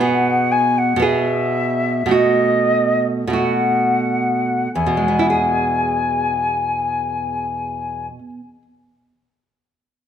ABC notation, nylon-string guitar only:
X:1
M:4/4
L:1/8
Q:1/4=45
K:E
V:1 name="Nylon-string guitar"
[B,,B,G]2 [B,,B,G]2 [B,,A,F]2 [B,,A,F]2 | [E,,B,,G,B,EG]8 |]